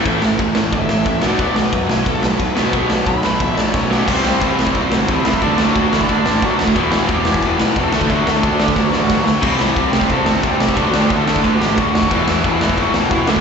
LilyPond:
<<
  \new Staff \with { instrumentName = "Lead electric guitar" } { \time 4/4 \key b \minor \tempo 4 = 179 r2 e''4 e''8 d''8~ | d''8 b'4. a'8 b'4.~ | b'8 r8 b''4 e''8 d''8 <cis' b' cis''>8 <cis' g' cis''>8 | \key d \mixolydian <c' c''>4 <e e'>4 <fis fis'>4 <e e'>4 |
<d' d''>8 <fis fis'>4 <e e'>8 <d' d''>8 <d' d''>8 <fis fis'>4 | <e e'>4 <g g'>4 <b b'>4 <a a'>4 | <fis fis'>8 <a a'>4 <g g'>8 <fis fis'>8 <fis fis'>8 <fis fis'>4 | <e e'>4 <g g'>4 <a a'>8 <a a'>8 <g g'>4 |
<fis fis'>8 <g g'>8 <a a'>8 <a a'>8 <b b'>8 <g g'>8 <fis fis'>8 <fis fis'>8 | <e e'>4 <e e'>4 <fis fis'>4 <e e'>8 <d' d''>8 | }
  \new Staff \with { instrumentName = "Overdriven electric guitar" } { \clef bass \time 4/4 \key b \minor <a, e a>8 <a, e>8 <a, e>8 <a, e>8 <a, e>8 <a, e>8 <a, e>8 <b, fis b>8 | <b, fis b>8 <b, fis>8 <b, fis>8 <b, fis>8 <b, fis>8 <b, fis>8 <b, fis>8 <b, fis b>8 | <b, fis b>8 <b, fis>8 <b, fis>8 <b, fis>8 <b, fis>8 <b, fis>8 <b, fis>8 <b, fis b>8 | \key d \mixolydian <c g c'>1 |
<d a d'>1 | <e, b, e>2.~ <e, b, e>8 <d a d'>8~ | <d a d'>2.~ <d a d'>8 r8 | <c g c'>1 |
<d a d'>1 | <e, b, e>2.~ <e, b, e>8 <d a d'>8 | }
  \new Staff \with { instrumentName = "Overdriven electric guitar" } { \clef bass \time 4/4 \key b \minor <a, e a>2.~ <a, e a>8 <b, fis b>8~ | <b, fis b>2.~ <b, fis b>8 <b, fis b>8~ | <b, fis b>2.~ <b, fis b>8 r8 | \key d \mixolydian <c g c'>4. <c g c'>4. <c g c'>4 |
<d a d'>4. <d a d'>4. <d a d'>4 | <e, b, e>4. <e, b, e>4. <e, b, e>8 <d a d'>8~ | <d a d'>4 <d a d'>4. <d a d'>4 r8 | <c g c'>4. <c g c'>4. <c g c'>4 |
<d a d'>4. <d a d'>4. <d a d'>4 | <e, b, e>4. <e, b, e>4. <e, b, e>8 <d a d'>8 | }
  \new Staff \with { instrumentName = "Picked electric bass" } { \clef bass \time 4/4 \key b \minor a,,8 a,,8 a,,8 a,,8 g,,8 a,,8 a,,8 b,,8 | b,,4 fis,8 b,,8 b,,8 b,,8 b,,8 b,,8 | b,,8 b,,8 b,,8 b,,8 a,,8 b,,8 b,,4 | \key d \mixolydian c,8 c,8 c,8 c8 c,8 g,,8 c,8 c,8 |
d,8 d,8 d,8 d8 d,8 a,,8 d,8 d,8 | e,,8 e,,8 e,,8 e,8 e,,8 b,,8 e,,8 d,8 | d,8 d,8 d,8 d8 d,8 a,,8 d,8 d,8 | c,8 c,8 c,8 c8 c,8 g,,8 c,8 c,8 |
d,8 d,8 d,8 d8 d,8 a,,8 d,8 dis,8 | e,,8 e,,8 e,,8 e,8 e,,8 b,,8 e,,8 d,8 | }
  \new DrumStaff \with { instrumentName = "Drums" } \drummode { \time 4/4 <bd cymr>8 sn8 <bd cymr>8 sn8 <bd cymr>8 sn8 <bd cymr>8 sn8 | <bd cymr>8 sn8 <bd cymr>8 sn8 <bd cymr>8 sn8 <bd cymr>8 sn8 | <bd cymr>8 sn8 <bd cymr>8 sn8 <bd cymr>8 sn8 <bd sn>8 sn8 | <cymc bd>8 sn8 <cymc bd>8 sn16 bd16 <cymc bd>8 sn8 <cymc bd>8 sn16 bd16 |
<cymc bd>8 sn8 <cymc bd>8 sn16 bd16 <cymc bd>8 sn8 <cymc bd>8 sn16 bd16 | <cymc bd>8 sn8 <cymc bd>8 sn16 bd16 <cymc bd>8 sn8 <cymc bd>8 sn16 bd16 | <cymc bd>8 sn8 <cymc bd>8 sn16 bd16 <bd sn>8 sn8 <bd sn>8 sn8 | <cymc bd>8 sn8 <cymc bd>8 sn16 bd16 <cymc bd>8 sn8 <cymc bd>8 sn16 bd16 |
<cymc bd>8 sn8 <cymc bd>8 sn16 bd16 <cymc bd>8 sn8 <cymc bd>8 sn16 bd16 | <cymc bd>8 sn8 <cymc bd>8 sn16 bd16 <cymc bd>8 sn8 <cymc bd>8 sn16 bd16 | }
>>